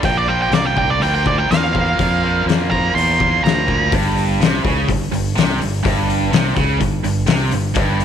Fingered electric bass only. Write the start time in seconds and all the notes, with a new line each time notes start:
0.03 A#1
0.51 C2
1.00 D2
1.51 E2
1.99 F2
2.46 F2
2.95 E2
3.45 D2
3.92 G1
4.40 C2
4.65 C#2
4.88 G1
5.12 G1
5.37 C2
5.60 G1
5.85 G1
6.33 C2
6.57 C#2
6.80 G1
7.05 G1
7.28 C2
7.53 G1
7.75 G1